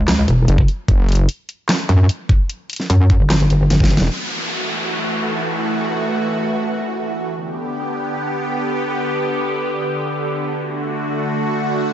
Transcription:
Already playing: wobble bass C#2
0.08 snare, clap, closed hi-hat
0.28 wobble bass E1, closed hi-hat
0.48 wobble bass F#1, closed hi-hat
0.58 wobble bass F#1, kick
0.68 closed hi-hat
0.88 wobble bass F#1, kick, closed hi-hat
1.09 closed hi-hat
1.12 closed hi-hat
1.15 closed hi-hat
1.29 closed hi-hat
1.49 closed hi-hat
1.69 snare, clap, closed hi-hat
1.89 wobble bass F#2, closed hi-hat
2.09 closed hi-hat
2.29 kick, closed hi-hat
2.50 closed hi-hat
2.70 closed hi-hat
2.73 closed hi-hat
2.76 snare, closed hi-hat
2.90 wobble bass F#2, closed hi-hat
3.10 kick, closed hi-hat
3.20 wobble bass G1
3.30 snare, clap, closed hi-hat
3.40 closed hi-hat
3.50 closed hi-hat
3.70 snare, closed hi-hat
3.80 kick, snare
3.90 closed hi-hat
3.97 wobble bass E1, snare
4.11 supersaw synth E3 A3 F#4, downlifter
7.33 supersaw synth D3 B3 G4
10.55 supersaw synth A3 F#4

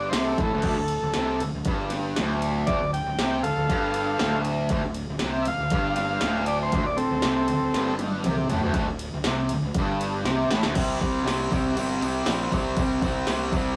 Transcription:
Already playing: distorted electric guitar G2
0.09 fingered electric bass C2, distorted electric guitar C3, transistor combo organ C5, snare, ride
0.24 transistor combo organ A4
0.38 fingered electric bass A1, distorted electric guitar A2, kick, ride
0.43 transistor combo organ A4
0.51 fingered electric bass D1, distorted electric guitar D2
0.62 fingered electric bass D1, distorted electric guitar D2, kick, crash
0.77 fingered electric bass D1, distorted electric guitar D2
0.88 ride
1.02 fingered electric bass D1, distorted electric guitar D2
1.14 fingered electric bass C2, distorted electric guitar C3, snare, ride
1.40 fingered electric bass D1, distorted electric guitar D2, ride
1.53 fingered electric bass D1, distorted electric guitar D2
1.65 fingered electric bass G1, distorted electric guitar G2, kick, ride
1.90 snare, ride
2.16 fingered electric bass D1, distorted electric guitar D2, snare, ride
2.42 ride
2.67 fingered electric bass D1, distorted electric guitar D2, transistor combo organ D5, kick, ride
2.80 fingered electric bass D1, distorted electric guitar D2
2.93 transistor combo organ G5, ride
3.05 fingered electric bass D1, distorted electric guitar D2
3.17 fingered electric bass C2, distorted electric guitar C3, snare, ride
3.43 fingered electric bass D1, distorted electric guitar D2, transistor combo organ A4 F5, ride
3.56 fingered electric bass D1, distorted electric guitar D2
3.69 fingered electric bass G1, distorted electric guitar G2, kick, ride
3.94 ride
4.19 fingered electric bass D1, distorted electric guitar D2, snare, ride
4.45 ride
4.69 fingered electric bass D1, distorted electric guitar D2, kick, ride
4.84 fingered electric bass D1, distorted electric guitar D2
4.94 ride
5.09 fingered electric bass D1, distorted electric guitar D2
5.19 fingered electric bass C2, distorted electric guitar C3, snare, ride
5.42 transistor combo organ E5, ride
5.47 fingered electric bass D1, distorted electric guitar D2, transistor combo organ F5
5.58 fingered electric bass D1, distorted electric guitar D2
5.70 fingered electric bass G1, distorted electric guitar G2, kick, ride
5.96 snare, ride
6.21 fingered electric bass D1, distorted electric guitar D2, snare, ride
6.46 transistor combo organ D5, ride
6.63 transistor combo organ C5
6.72 fingered electric bass D1, distorted electric guitar D2, kick, ride
6.86 fingered electric bass D1, distorted electric guitar D2, transistor combo organ D5
6.97 transistor combo organ C4 A4, ride
7.11 fingered electric bass D1, distorted electric guitar D2
7.22 fingered electric bass C2, distorted electric guitar C3, snare, ride
7.48 fingered electric bass D1, distorted electric guitar D2, ride
7.61 fingered electric bass D1, distorted electric guitar D2
7.73 fingered electric bass G1, distorted electric guitar G2, snare, ride
7.99 high tom, ride
8.24 fingered electric bass C2, distorted electric guitar C3, mid tom, ride
8.37 mid tom
8.49 fingered electric bass A1, distorted electric guitar A2, floor tom, ride
8.61 fingered electric bass D1, distorted electric guitar D2, floor tom
8.74 fingered electric bass D1, distorted electric guitar D2, kick, ride
8.88 fingered electric bass D1, distorted electric guitar D2
8.99 ride
9.13 fingered electric bass D1, distorted electric guitar D2
9.24 fingered electric bass C2, distorted electric guitar C3, snare, ride
9.49 fingered electric bass D1, distorted electric guitar D2, ride
9.62 fingered electric bass D1, distorted electric guitar D2
9.74 fingered electric bass G1, distorted electric guitar G2, kick, ride
10.01 ride
10.24 fingered electric bass C2, distorted electric guitar C3, snare, ride
10.49 fingered electric bass A1, distorted electric guitar A2, snare, ride
10.63 fingered electric bass D1, distorted electric guitar D2, snare
10.75 fingered electric bass C2, distorted electric guitar C3 G3 C4, kick, crash
11.00 fingered electric bass C2, distorted electric guitar C3 G3 C4, kick, crash
11.24 fingered electric bass C2, distorted electric guitar C3 G3 C4, snare, crash
11.52 fingered electric bass C2, distorted electric guitar C3 G3 C4, kick, crash
11.76 fingered electric bass G1, distorted electric guitar C3 G3 C4, crash
12.01 fingered electric bass C2, distorted electric guitar C3 G3 C4, crash
12.26 fingered electric bass A#1, distorted electric guitar C3 G3 C4, snare, crash
12.52 fingered electric bass C2, distorted electric guitar C3 G3 C4, kick, crash
12.77 fingered electric bass C2, distorted electric guitar C3 G3 C4, kick, crash
13.02 fingered electric bass C2, distorted electric guitar C3 G3 C4, kick, crash
13.27 fingered electric bass C2, distorted electric guitar C3 G3 C4, snare, crash
13.52 distorted electric guitar C3 G3 C4, kick, crash

